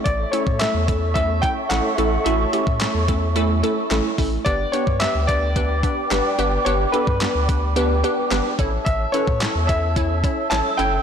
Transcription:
<<
  \new Staff \with { instrumentName = "Flute section" } { \time 4/4 \key a \mixolydian \tempo 4 = 109 <a' cis'' e'' cis'''>1~ | <a' cis'' e'' cis'''>1 | <b' g''>1~ | <b' g''>2.~ <b' g''>8 <e'' e'''>8~ |
<e'' e'''>1 | }
  \new Staff \with { instrumentName = "Grand piano" } { \time 4/4 \key a \mixolydian d''8 cis''8 e''4 e''8 g''8 fis''4 | e''4 r2. | d''8 cis''8 e''8 d''2~ d''8 | cis''8 b'2 r4. |
e''8 cis''4 e''4. a''8 g''8 | }
  \new Staff \with { instrumentName = "Synth pluck" } { \time 4/4 \key a \mixolydian <a cis' e' a'>8 <a cis' e' a'>8 <a cis' e' a'>8 <a cis' e' a'>8 <a cis' e' a'>8 <a cis' e' a'>8 <a cis' e' a'>8 <a cis' e' a'>8 | <a cis' e' fis'>8 <a cis' e' g'>8 <a cis' e' a'>8 <a cis' e' a'>8 <a cis' e' a'>8 <a cis' e' a'>8 <a cis' e' a'>8 <a cis' e' a'>8 | <b d' g' b'>8 <b d' g' b'>8 <b d' g' b'>8 <b d' g' b'>8 <b d' g' b'>8 <b d' g' b'>8 <b d' g' b'>8 <b d' g' b'>8 | <b d' g' b'>8 <b d' g' a'>8 <b d' g' b'>8 <b d' g' b'>8 <b d' g' b'>8 <b d' g' b'>8 <b d' g' b'>8 <cis' e' a' cis''>8~ |
<cis' e' a' cis''>8 <cis' e' a' b'>8 <cis' e' a' cis''>8 <cis' e' a' cis''>8 <cis' e' a' cis''>8 <cis' e' a' cis''>8 <cis' e' a' cis''>8 <cis' e' a' cis''>8 | }
  \new Staff \with { instrumentName = "Sub bass" } { \clef bass \time 4/4 \key a \mixolydian a,,8 r16 a,8 e,4.~ e,16 a,,16 r16 a,,8 | a,,8 r16 a,8 e,4.~ e,16 a,,16 r16 a,,8 | g,,8 r16 g,8 d,4.~ d,16 g,,16 r16 g,,8 | g,,8 r16 g,8 d,4.~ d,16 g,,16 r16 a,,8 |
a,,8 r16 a,8 e,4.~ e,16 a,,16 r16 fis,,8 | }
  \new DrumStaff \with { instrumentName = "Drums" } \drummode { \time 4/4 <hh bd>8 hh16 bd16 <hc hh sn>8 <hh bd>8 <hh bd>8 <hh bd>8 <hc hh sn>8 hh8 | hh8 hh16 bd16 <hc hh sn>8 <hh bd>8 hh8 hh8 <hc hh sn>8 <hho bd>8 | <hh bd>8 hh16 bd16 <hc hh sn>8 <hh bd>8 <hh bd>8 <hh bd>8 <hc hh sn>8 hh8 | hh8 hh16 bd16 <hc hh sn>8 <hh bd>8 hh8 hh8 <hc hh sn>8 <hh bd>8 |
<hh bd>8 hh16 bd16 <hc hh sn>8 <hh bd>8 <hh bd>8 <hh bd>8 <hc hh sn>8 hh8 | }
>>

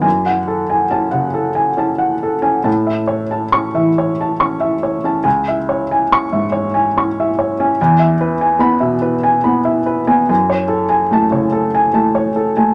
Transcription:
<<
  \new Staff \with { instrumentName = "Felt piano" } { \time 3/4 \key fis \minor \tempo 4 = 71 << { r4 a''8 r4. | r4 cis'''8 r4. | r4 cis'''8 r4. | r4 b''8 r4. |
r4 a''8 r4. | } \\ { gis''16 fis''16 a'16 gis''8 fis''16 a'16 gis''16 a''16 fis''16 a'16 gis''16 | a''16 e''16 cis''16 a''8 e''16 cis''16 a''16 cis'''16 e''16 cis''16 a''16 | gis''16 e''16 cis''16 gis''8 e''16 cis''16 gis''16 cis'''16 e''16 cis''16 gis''16 | gis''16 e''16 b'16 gis''8 e''16 b'16 gis''16 b''16 e''16 b'16 gis''16 |
gis''16 cis''16 a'16 gis''8 cis''16 a'16 gis''16 a''16 cis''16 a'16 gis''16 | } >> }
  \new Staff \with { instrumentName = "Felt piano" } { \time 3/4 \key fis \minor fis,4 cis'16 cis8 r16 cis'8 r16 cis'16 | a,4 cis'16 e8 r16 cis'8 r16 cis'16 | cis,4 cis'16 gis,8 r16 cis'8 r16 cis'16 | e,4 b16 b,8 r16 b8 r16 b16 |
fis,4 a16 cis8 r16 a8 r16 a16 | }
>>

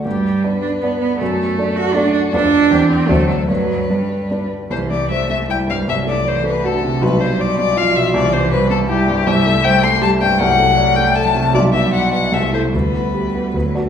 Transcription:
<<
  \new Staff \with { instrumentName = "Violin" } { \time 3/4 \key g \major \tempo 4 = 157 g'4 b'2 | a'2 fis'4 | a'4 g'4 a'4 | b'2~ b'8 r8 |
\key c \major c''8 d''8 e''8 e''8 g''8 f''8 | e''8 d''8 c''8 b'8 a'4 | b'8 c''8 d''8 d''8 f''8 e''8 | d''8 c''8 b'8 a'8 g'4 |
\key g \major e''4 g''8 c'''8 a''8 g''8 | fis''4. g''8 a''4 | d''8 e''8 fis''8 fis''8 e''8 c''8 | b'2~ b'8 r8 | }
  \new Staff \with { instrumentName = "Grand piano" } { \time 3/4 \key g \major g,4 <b d' d''>4 <b d' d''>4 | fis,4 <a d' d''>4 <a d' d''>4 | <f, g d' b'>4 <e, g c' c''>4 <d, fis d' c''>4 | g,4 <g d' b'>4 <g d' b'>4 |
\key c \major c,8 g8 c''8 g8 e'8 g,8 | c,8 a8 d''8 a8 fis'8 c8 | b,,8 g8 d''8 g8 f'8 b,8 | c,8 g8 c''8 g8 e'8 g,8 |
\key g \major c,8 a8 c''8 a8 g'8 g,8 | c,8 a8 d''8 a8 a'8 c8 | b,,8 b8 d''8 b8 c,8 <e' a'>8 | d,8 b8 g'8 b8 d,8 <d' fis'>8 | }
  \new Staff \with { instrumentName = "Cello" } { \clef bass \time 3/4 \key g \major g4. d'8 b8 b8 | a4. fis'8 d'8 d'8 | d'4. c'8 a8 fis8 | fis4 g4. r8 |
\key c \major e4 a4 g4 | fis4 e4 d4 | g2 f4 | e4 g4 g4 |
\key g \major g4 g4 g4 | fis2 fis4 | g2 a4 | g2 fis8 r8 | }
>>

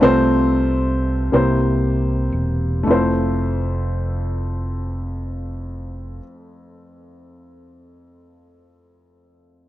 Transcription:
<<
  \new Staff \with { instrumentName = "Grand piano" } { \time 6/8 \key f \major \tempo 4. = 35 << { d''16 r2 r8. | r2. | r2. | } \\ { <c a c' f' c''>4. <c bes e' g' c''>4. | <f, a e' f' c''>2.~ | <f, a e' f' c''>2. | } >> }
  \new Staff \with { instrumentName = "Fingered electric bass" } { \clef bass \time 6/8 \key f \major c,4. c,4 e,,8 | f,,2.~ | f,,2. | }
>>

